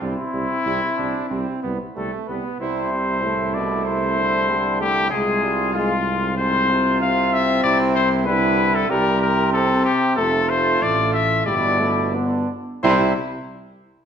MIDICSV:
0, 0, Header, 1, 6, 480
1, 0, Start_track
1, 0, Key_signature, 0, "major"
1, 0, Tempo, 650759
1, 10, Time_signature, 4, 2, 24, 8
1, 1931, Tempo, 629591
1, 7691, Tempo, 649351
1, 8651, Tempo, 677966
1, 10476, End_track
2, 0, Start_track
2, 0, Title_t, "Trumpet"
2, 0, Program_c, 0, 56
2, 7, Note_on_c, 0, 64, 126
2, 1424, Note_off_c, 0, 64, 0
2, 1447, Note_on_c, 0, 69, 92
2, 1556, Note_off_c, 0, 69, 0
2, 1678, Note_on_c, 0, 71, 83
2, 1916, Note_off_c, 0, 71, 0
2, 1925, Note_on_c, 0, 72, 113
2, 2635, Note_on_c, 0, 74, 103
2, 2647, Note_off_c, 0, 72, 0
2, 2870, Note_off_c, 0, 74, 0
2, 2874, Note_on_c, 0, 72, 123
2, 3582, Note_off_c, 0, 72, 0
2, 3599, Note_on_c, 0, 67, 127
2, 3822, Note_off_c, 0, 67, 0
2, 3827, Note_on_c, 0, 68, 117
2, 4300, Note_off_c, 0, 68, 0
2, 4305, Note_on_c, 0, 65, 116
2, 4792, Note_off_c, 0, 65, 0
2, 4795, Note_on_c, 0, 72, 127
2, 5272, Note_off_c, 0, 72, 0
2, 5282, Note_on_c, 0, 77, 116
2, 5524, Note_on_c, 0, 76, 126
2, 5536, Note_off_c, 0, 77, 0
2, 5752, Note_off_c, 0, 76, 0
2, 5757, Note_on_c, 0, 74, 127
2, 5865, Note_off_c, 0, 74, 0
2, 5994, Note_on_c, 0, 72, 127
2, 6103, Note_off_c, 0, 72, 0
2, 6232, Note_on_c, 0, 71, 127
2, 6606, Note_on_c, 0, 69, 127
2, 6617, Note_off_c, 0, 71, 0
2, 6719, Note_off_c, 0, 69, 0
2, 6724, Note_on_c, 0, 70, 127
2, 6957, Note_off_c, 0, 70, 0
2, 6962, Note_on_c, 0, 70, 127
2, 7199, Note_off_c, 0, 70, 0
2, 7203, Note_on_c, 0, 69, 125
2, 7436, Note_off_c, 0, 69, 0
2, 7440, Note_on_c, 0, 67, 127
2, 7679, Note_off_c, 0, 67, 0
2, 7684, Note_on_c, 0, 69, 127
2, 7928, Note_on_c, 0, 72, 127
2, 7939, Note_off_c, 0, 69, 0
2, 8172, Note_on_c, 0, 74, 127
2, 8183, Note_off_c, 0, 72, 0
2, 8395, Note_off_c, 0, 74, 0
2, 8399, Note_on_c, 0, 76, 127
2, 8643, Note_off_c, 0, 76, 0
2, 8646, Note_on_c, 0, 74, 127
2, 9118, Note_off_c, 0, 74, 0
2, 9612, Note_on_c, 0, 72, 105
2, 9825, Note_off_c, 0, 72, 0
2, 10476, End_track
3, 0, Start_track
3, 0, Title_t, "Flugelhorn"
3, 0, Program_c, 1, 56
3, 0, Note_on_c, 1, 60, 77
3, 108, Note_off_c, 1, 60, 0
3, 248, Note_on_c, 1, 60, 58
3, 358, Note_off_c, 1, 60, 0
3, 481, Note_on_c, 1, 64, 97
3, 592, Note_off_c, 1, 64, 0
3, 712, Note_on_c, 1, 62, 90
3, 951, Note_off_c, 1, 62, 0
3, 955, Note_on_c, 1, 60, 85
3, 1192, Note_off_c, 1, 60, 0
3, 1196, Note_on_c, 1, 59, 84
3, 1309, Note_off_c, 1, 59, 0
3, 1441, Note_on_c, 1, 57, 86
3, 1682, Note_off_c, 1, 57, 0
3, 1688, Note_on_c, 1, 59, 80
3, 1914, Note_off_c, 1, 59, 0
3, 1919, Note_on_c, 1, 64, 94
3, 2147, Note_off_c, 1, 64, 0
3, 2166, Note_on_c, 1, 64, 85
3, 3809, Note_off_c, 1, 64, 0
3, 3841, Note_on_c, 1, 65, 98
3, 4788, Note_off_c, 1, 65, 0
3, 4807, Note_on_c, 1, 65, 96
3, 5769, Note_on_c, 1, 64, 100
3, 5780, Note_off_c, 1, 65, 0
3, 6239, Note_off_c, 1, 64, 0
3, 6244, Note_on_c, 1, 64, 104
3, 6722, Note_on_c, 1, 67, 98
3, 6733, Note_off_c, 1, 64, 0
3, 7476, Note_off_c, 1, 67, 0
3, 7691, Note_on_c, 1, 65, 102
3, 8647, Note_on_c, 1, 64, 88
3, 8658, Note_off_c, 1, 65, 0
3, 9123, Note_on_c, 1, 62, 83
3, 9133, Note_off_c, 1, 64, 0
3, 9373, Note_off_c, 1, 62, 0
3, 9615, Note_on_c, 1, 64, 115
3, 9827, Note_off_c, 1, 64, 0
3, 10476, End_track
4, 0, Start_track
4, 0, Title_t, "French horn"
4, 0, Program_c, 2, 60
4, 11, Note_on_c, 2, 55, 82
4, 120, Note_off_c, 2, 55, 0
4, 244, Note_on_c, 2, 55, 68
4, 355, Note_off_c, 2, 55, 0
4, 492, Note_on_c, 2, 55, 77
4, 600, Note_off_c, 2, 55, 0
4, 733, Note_on_c, 2, 55, 58
4, 842, Note_off_c, 2, 55, 0
4, 974, Note_on_c, 2, 55, 78
4, 1082, Note_off_c, 2, 55, 0
4, 1220, Note_on_c, 2, 55, 66
4, 1327, Note_off_c, 2, 55, 0
4, 1449, Note_on_c, 2, 55, 67
4, 1558, Note_off_c, 2, 55, 0
4, 1696, Note_on_c, 2, 55, 67
4, 1801, Note_off_c, 2, 55, 0
4, 1925, Note_on_c, 2, 55, 86
4, 2407, Note_on_c, 2, 57, 97
4, 2419, Note_off_c, 2, 55, 0
4, 3361, Note_on_c, 2, 55, 103
4, 3373, Note_off_c, 2, 57, 0
4, 3602, Note_on_c, 2, 57, 91
4, 3613, Note_off_c, 2, 55, 0
4, 3832, Note_off_c, 2, 57, 0
4, 3837, Note_on_c, 2, 56, 88
4, 4079, Note_on_c, 2, 55, 97
4, 4090, Note_off_c, 2, 56, 0
4, 4318, Note_off_c, 2, 55, 0
4, 4323, Note_on_c, 2, 56, 105
4, 4432, Note_off_c, 2, 56, 0
4, 4564, Note_on_c, 2, 60, 85
4, 5274, Note_off_c, 2, 60, 0
4, 5292, Note_on_c, 2, 60, 110
4, 6236, Note_on_c, 2, 55, 107
4, 6248, Note_off_c, 2, 60, 0
4, 6715, Note_off_c, 2, 55, 0
4, 6720, Note_on_c, 2, 55, 107
4, 7026, Note_off_c, 2, 55, 0
4, 7200, Note_on_c, 2, 60, 116
4, 7695, Note_on_c, 2, 57, 107
4, 7706, Note_off_c, 2, 60, 0
4, 8649, Note_on_c, 2, 55, 111
4, 8660, Note_off_c, 2, 57, 0
4, 8886, Note_on_c, 2, 57, 99
4, 8897, Note_off_c, 2, 55, 0
4, 9125, Note_on_c, 2, 59, 84
4, 9136, Note_off_c, 2, 57, 0
4, 9374, Note_off_c, 2, 59, 0
4, 9618, Note_on_c, 2, 55, 105
4, 9829, Note_off_c, 2, 55, 0
4, 10476, End_track
5, 0, Start_track
5, 0, Title_t, "Trombone"
5, 0, Program_c, 3, 57
5, 12, Note_on_c, 3, 60, 90
5, 1665, Note_off_c, 3, 60, 0
5, 1923, Note_on_c, 3, 48, 84
5, 2407, Note_on_c, 3, 45, 90
5, 2419, Note_off_c, 3, 48, 0
5, 2637, Note_on_c, 3, 47, 94
5, 2649, Note_off_c, 3, 45, 0
5, 2879, Note_on_c, 3, 48, 92
5, 2890, Note_off_c, 3, 47, 0
5, 3125, Note_on_c, 3, 50, 91
5, 3136, Note_off_c, 3, 48, 0
5, 3834, Note_on_c, 3, 48, 93
5, 3846, Note_off_c, 3, 50, 0
5, 4308, Note_on_c, 3, 44, 86
5, 4320, Note_off_c, 3, 48, 0
5, 4787, Note_off_c, 3, 44, 0
5, 4791, Note_on_c, 3, 44, 94
5, 5044, Note_on_c, 3, 48, 99
5, 5055, Note_off_c, 3, 44, 0
5, 5751, Note_off_c, 3, 48, 0
5, 5756, Note_on_c, 3, 48, 109
5, 6227, Note_off_c, 3, 48, 0
5, 6242, Note_on_c, 3, 50, 95
5, 6718, Note_on_c, 3, 48, 107
5, 6729, Note_off_c, 3, 50, 0
5, 8435, Note_off_c, 3, 48, 0
5, 8654, Note_on_c, 3, 47, 93
5, 9125, Note_on_c, 3, 50, 87
5, 9136, Note_off_c, 3, 47, 0
5, 9374, Note_off_c, 3, 50, 0
5, 9617, Note_on_c, 3, 48, 110
5, 9829, Note_off_c, 3, 48, 0
5, 10476, End_track
6, 0, Start_track
6, 0, Title_t, "Tuba"
6, 0, Program_c, 4, 58
6, 9, Note_on_c, 4, 36, 86
6, 118, Note_off_c, 4, 36, 0
6, 246, Note_on_c, 4, 36, 75
6, 356, Note_off_c, 4, 36, 0
6, 485, Note_on_c, 4, 36, 81
6, 595, Note_off_c, 4, 36, 0
6, 726, Note_on_c, 4, 36, 66
6, 836, Note_off_c, 4, 36, 0
6, 964, Note_on_c, 4, 36, 77
6, 1074, Note_off_c, 4, 36, 0
6, 1209, Note_on_c, 4, 36, 81
6, 1318, Note_off_c, 4, 36, 0
6, 1453, Note_on_c, 4, 36, 76
6, 1561, Note_off_c, 4, 36, 0
6, 1686, Note_on_c, 4, 36, 62
6, 1793, Note_off_c, 4, 36, 0
6, 1921, Note_on_c, 4, 36, 89
6, 3807, Note_off_c, 4, 36, 0
6, 3841, Note_on_c, 4, 36, 97
6, 5732, Note_off_c, 4, 36, 0
6, 5760, Note_on_c, 4, 36, 114
6, 6699, Note_off_c, 4, 36, 0
6, 6716, Note_on_c, 4, 36, 105
6, 7458, Note_off_c, 4, 36, 0
6, 7684, Note_on_c, 4, 29, 97
6, 8136, Note_off_c, 4, 29, 0
6, 8166, Note_on_c, 4, 33, 93
6, 8636, Note_off_c, 4, 33, 0
6, 8641, Note_on_c, 4, 31, 93
6, 9357, Note_off_c, 4, 31, 0
6, 9613, Note_on_c, 4, 36, 108
6, 9826, Note_off_c, 4, 36, 0
6, 10476, End_track
0, 0, End_of_file